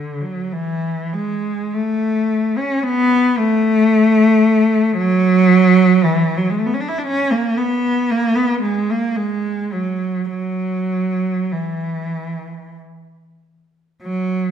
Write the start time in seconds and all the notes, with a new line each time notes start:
Already playing: D3
0.21 F#3
0.52 E3
1.13 G#3
1.73 A3
2.57 C#4
2.83 B3
3.38 A3
4.97 F#3
6.04 E3
6.37 F#3
6.50 G#3
6.60 A3
6.66 B3
6.74 C#4
6.80 D4
6.88 E4
6.98 D4
7.07 C#4
7.31 A#3
7.57 B3
8.11 A#3
8.35 B3
8.62 G#3
8.91 A#3
9.16 G#3
9.72 F#3
10.29 F#3
11.52 E3
14.02 F#3